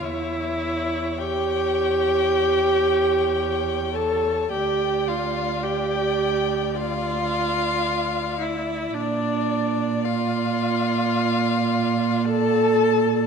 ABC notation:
X:1
M:4/4
L:1/8
Q:1/4=54
K:Dm
V:1 name="Violin"
e2 g4- g a | g f g2 f3 e | d2 f4 a2 |]
V:2 name="Violin"
^c8 | d8 | d8 |]
V:3 name="Viola"
E2 G4- G A | G F G2 F3 E | D2 F4 A2 |]
V:4 name="Cello" clef=bass
E,,8 | D,,8 | B,,8 |]